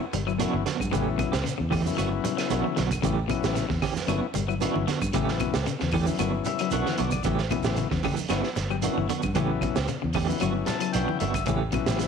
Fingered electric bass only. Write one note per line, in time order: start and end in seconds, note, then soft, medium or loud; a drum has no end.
0.14 0.44 G1 loud
0.54 0.63 G1 medium
0.80 0.90 G2 medium
0.93 1.23 A1 medium
1.34 1.43 C#2 medium
1.60 1.89 E2 medium
1.99 2.18 G1 loud
2.52 2.62 B1 medium
2.78 2.98 B1 medium
3.04 3.34 A1 medium
3.44 3.64 A1 medium
3.70 3.79 E2 medium
3.96 muted fingered electric bass stroke soft
4.08 4.19 G1 loud
4.36 4.66 G1 loud
4.76 4.85 G1 medium
5.02 5.11 G2 medium
5.14 5.45 A1 medium
5.55 5.64 C#2 medium
5.82 6.11 E2 loud
6.20 6.40 G1 loud
6.73 6.83 B1 medium
7.00 7.19 B1 medium
7.25 7.56 A1 medium
7.65 7.85 A1 medium
7.91 8.01 E2 medium
8.18 muted fingered electric bass stroke soft
8.30 8.41 G1 loud
8.57 8.88 G1 medium
8.98 9.07 G1 medium
9.24 9.33 G2 medium
9.35 9.66 A1 medium
9.77 9.86 C#2 medium
10.04 10.33 E2 medium
10.43 10.62 G1 medium
10.95 11.05 B1 medium
11.21 11.41 G1 medium
11.47 11.77 A1 medium
11.87 12.07 A1 medium